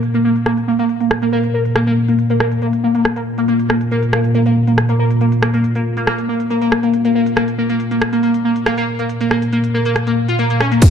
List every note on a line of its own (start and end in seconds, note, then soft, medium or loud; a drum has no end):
0.00 10.81 A#2 medium
0.00 closed hi-hat medium
0.14 0.17 A#3 medium
0.14 closed hi-hat medium
0.25 0.29 A#3 medium
0.36 closed hi-hat medium
0.46 0.51 A#3 medium
0.46 cross-stick medium
0.46 closed hi-hat medium
0.57 closed hi-hat medium
0.68 0.71 A#3 loud
0.79 0.83 A#3 loud
0.79 closed hi-hat medium
0.89 closed hi-hat medium
1.01 1.05 A#3 medium
1.01 closed hi-hat medium
1.11 cross-stick medium
1.22 1.25 A#3 loud
1.22 closed hi-hat medium
1.32 1.37 A#3 loud
1.32 closed hi-hat medium
1.44 closed hi-hat medium
1.54 1.59 A#3 medium
1.65 closed hi-hat medium
1.76 1.78 A#3 loud
1.76 cross-stick loud
1.76 closed hi-hat medium
1.87 1.91 A#3 loud
1.87 closed hi-hat medium
2.08 2.13 A#3 medium
2.08 closed hi-hat medium
2.19 closed hi-hat medium
2.30 2.33 A#3 loud
2.30 closed hi-hat medium
2.40 2.45 A#3 loud
2.40 cross-stick medium
2.52 closed hi-hat medium
2.62 2.67 A#3 medium
2.62 closed hi-hat medium
2.73 closed hi-hat medium
2.84 2.86 A#3 loud
2.95 2.99 A#3 loud
2.95 closed hi-hat medium
3.05 cross-stick medium
3.05 closed hi-hat medium
3.16 3.21 A#3 medium
3.16 closed hi-hat medium
3.38 3.41 A#3 medium
3.38 closed hi-hat medium
3.48 3.53 A#3 medium
3.48 closed hi-hat medium
3.59 closed hi-hat medium
3.70 3.75 A#3 medium
3.70 cross-stick medium
3.81 closed hi-hat medium
3.91 3.96 A#3 loud
3.91 closed hi-hat medium
4.03 closed hi-hat medium
4.13 4.18 A#3 medium
4.13 cross-stick medium
4.24 closed hi-hat medium
4.35 4.37 A#3 loud
4.35 closed hi-hat medium
4.46 4.50 A#3 medium
4.46 closed hi-hat medium
4.67 4.72 A#3 medium
4.67 closed hi-hat medium
4.78 cross-stick medium
4.78 closed hi-hat medium
4.89 4.92 A#3 loud
4.89 closed hi-hat medium
4.99 5.04 A#3 loud
5.11 closed hi-hat medium
5.21 5.26 A#3 medium
5.21 closed hi-hat medium
5.32 closed hi-hat medium
5.42 5.45 A#3 loud
5.42 cross-stick loud
5.54 5.58 A#3 loud
5.54 closed hi-hat medium
5.64 closed hi-hat medium
5.75 5.80 A#3 medium
5.75 closed hi-hat medium
5.97 6.00 A#3 medium
5.97 closed hi-hat medium
6.07 6.12 A#3 loud
6.07 cross-stick medium
6.07 closed hi-hat medium
6.18 closed hi-hat medium
6.29 6.34 A#3 medium
6.40 closed hi-hat medium
6.50 6.53 A#3 loud
6.50 closed hi-hat medium
6.62 6.66 A#3 loud
6.62 closed hi-hat medium
6.72 cross-stick medium
6.83 6.88 A#3 medium
6.83 closed hi-hat medium
6.94 closed hi-hat medium
7.05 7.08 A#3 medium
7.05 closed hi-hat medium
7.15 7.20 A#3 loud
7.26 closed hi-hat medium
7.37 7.42 A#3 medium
7.37 cross-stick medium
7.37 closed hi-hat medium
7.48 closed hi-hat medium
7.58 7.61 A#3 loud
7.70 7.74 A#3 loud
7.70 closed hi-hat medium
7.80 closed hi-hat medium
7.91 7.96 A#3 medium
7.91 closed hi-hat medium
8.02 cross-stick loud
8.13 8.15 A#3 loud
8.13 closed hi-hat medium
8.23 8.28 A#3 loud
8.23 closed hi-hat medium
8.34 closed hi-hat medium
8.45 8.49 A#3 medium
8.56 closed hi-hat medium
8.66 8.69 A#3 loud
8.66 cross-stick loud
8.66 closed hi-hat medium
8.78 8.82 A#3 loud
8.78 closed hi-hat medium
8.99 9.04 A#3 medium
8.99 closed hi-hat medium
9.09 closed hi-hat medium
9.21 9.23 A#3 loud
9.21 closed hi-hat medium
9.31 9.36 A#3 medium
9.31 cross-stick medium
9.42 closed hi-hat medium
9.53 9.57 A#3 medium
9.53 closed hi-hat medium
9.64 closed hi-hat medium
9.74 9.77 A#3 loud
9.85 9.90 A#3 loud
9.85 closed hi-hat medium
9.96 cross-stick medium
9.96 closed hi-hat medium
10.07 10.11 A#3 medium
10.07 closed hi-hat medium
10.29 10.35 F4 medium
10.29 closed hi-hat medium
10.39 10.44 A#3 loud
10.39 closed hi-hat medium
10.50 10.57 A#3 medium
10.50 closed hi-hat medium
10.60 10.65 C#4 loud
10.60 cross-stick medium
10.72 10.74 A#3 medium
10.72 closed hi-hat medium
10.82 10.90 A#2 medium
10.82 10.87 A#3 loud
10.82 kick loud
10.82 closed hi-hat medium
10.82 crash loud
10.82 tambourine medium